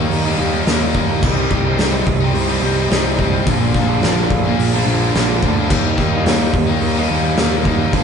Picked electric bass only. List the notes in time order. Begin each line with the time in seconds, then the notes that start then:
0.10 D#2
0.39 D#2
0.67 D#2
0.95 D#2
1.22 C2
1.51 C2
1.77 C2
2.07 C2
2.34 C2
2.62 C2
2.90 C2
3.47 A#1
3.75 A#1
4.01 A#1
4.30 A#1
4.58 A#1
4.86 A#1
5.15 A#1
5.43 D2
5.70 D#2
5.98 D#2
6.25 D#2
6.53 D#2
6.82 D#2
7.10 D#2
7.38 D#2
7.93 G1